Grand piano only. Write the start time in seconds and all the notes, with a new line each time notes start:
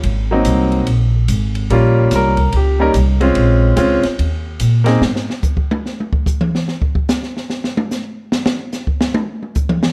0.31 F#3 A#3 C4 D#4
1.70 G3 A#3 C#4 F4
2.16 A#4
2.56 G4
2.79 G3 A#3 C#4 D#4 A#4
3.20 G#3 C4 C#4 F4
3.76 G#3 C4 C#4 F4
4.84 A#3 C4 D#4 G#4